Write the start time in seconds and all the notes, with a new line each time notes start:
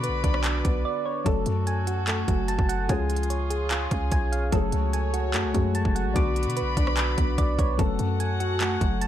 Already playing: B2 D3 B3 D4 F#4 B4 D5 B5 D6
0.03 B4, closed hi-hat
0.09 B1
0.24 B1 D4, kick, closed hi-hat
0.34 cross-stick
0.44 clap, closed hi-hat
0.65 B1 B3, kick, closed hi-hat
0.85 D5
1.06 C#5
1.24 F#1 F#3 A3 C#4 F#4 A4, kick, closed hi-hat
1.46 F#2, closed hi-hat
1.67 G#5, closed hi-hat
1.87 F#4, closed hi-hat
2.07 A3, clap, closed hi-hat
2.28 F#1 F#3, kick, closed hi-hat
2.48 A5, closed hi-hat
2.59 F#1, kick
2.69 F#5, closed hi-hat
2.88 C#2 F3 G#3 C#4 F4 G#4 G#5, kick, closed hi-hat
3.10 closed hi-hat
3.17 closed hi-hat
3.23 closed hi-hat
3.30 C#5, closed hi-hat
3.50 G#4, closed hi-hat
3.71 F4, clap, closed hi-hat
3.91 C#2 C#4, kick, closed hi-hat
4.12 B1 G#5, kick, closed hi-hat
4.32 F5, closed hi-hat
4.52 F#1 F#3 A3 C#4 F#4 G#4 A4 C#5, kick, closed hi-hat
4.72 C#2, closed hi-hat
4.93 G#5, closed hi-hat
5.14 F#4, closed hi-hat
5.34 F#2 A3, clap, closed hi-hat
5.44 C#2
5.53 F#2 F#3 G#3 A3 C#4, kick, closed hi-hat
5.75 A5, closed hi-hat
5.85 F#1, kick
5.95 F#5, closed hi-hat
6.06 A1
6.14 B1 D3 B3 D4 F#4 D5 B5 D6, kick, closed hi-hat
6.36 closed hi-hat
6.43 B2, closed hi-hat
6.50 closed hi-hat
6.57 B4, closed hi-hat
6.62 B1
6.77 B1 D4, kick, closed hi-hat
6.87 cross-stick
6.97 clap, closed hi-hat
7.18 B1 B3, kick, closed hi-hat
7.38 B1 D5, kick, closed hi-hat
7.59 B1 C#5, kick, closed hi-hat
7.77 F#1 F#3 A3 C#4 F#4 A4 F#5, kick, closed hi-hat
7.99 F#2, closed hi-hat
8.20 G#5, closed hi-hat
8.40 F#4, closed hi-hat
8.60 A3, clap, closed hi-hat
8.81 F#1 F#3, kick, closed hi-hat
9.01 A5, closed hi-hat